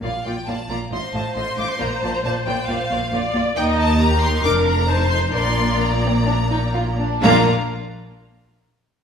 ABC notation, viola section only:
X:1
M:4/4
L:1/8
Q:1/4=134
K:Bb
V:1 name="Viola section"
z4 c4- | c6 d2 | e2 G2 B2 c2 | d6- d z |
[B,D] z6 z |]